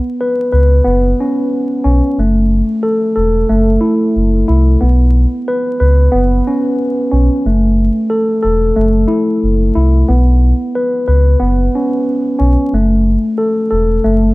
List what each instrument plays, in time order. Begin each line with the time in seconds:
Already playing: tine electric piano B3
0.21 tine electric piano B4
0.52 sub bass C#2, tine electric piano B4
0.84 sub bass F#1, tine electric piano B3
1.20 tine electric piano C#4
1.84 sub bass B1, tine electric piano C#4
2.18 sub bass F#1, tine electric piano A3
2.83 tine electric piano A4
3.16 sub bass E1, tine electric piano A4
3.49 sub bass F#1, tine electric piano A3
3.81 tine electric piano E4
4.16 sub bass F#1
4.48 sub bass C2, tine electric piano E4
4.81 sub bass B1, tine electric piano B3
5.48 tine electric piano B4
5.80 sub bass C#2, tine electric piano B4
6.12 sub bass F#1, tine electric piano B3
6.48 tine electric piano C#4
7.11 sub bass B1, tine electric piano C#4
7.46 sub bass F#1, tine electric piano A3
8.10 tine electric piano A4
8.43 sub bass E1, tine electric piano A4
8.76 sub bass F#1, tine electric piano A3
9.08 tine electric piano E4
9.43 sub bass F#1
9.75 sub bass C2, tine electric piano E4
10.08 sub bass B1, tine electric piano B3
10.75 tine electric piano B4
11.08 sub bass C#2, tine electric piano B4
11.39 sub bass F#1, tine electric piano B3
11.75 tine electric piano C#4
12.39 sub bass B1, tine electric piano C#4
12.73 sub bass F#1, tine electric piano A3
13.38 tine electric piano A4
13.71 sub bass E1, tine electric piano A4
14.04 sub bass F#1, tine electric piano A3